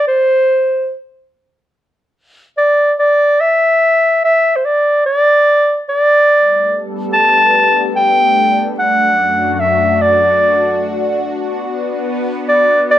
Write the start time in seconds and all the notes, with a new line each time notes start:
0.07 C5
2.58 D5
2.99 D5
3.41 E5
4.24 E5
4.56 C5
4.65 D5
5.06 D5
5.89 D5
6.28 G3 A3 B3 D4 A4
7.13 A5
7.96 G5
8.77 F#2 F#4 F#5
9.53 F#5
9.60 E5
10.02 D5
11.23 B3
12.48 D5
12.91 D5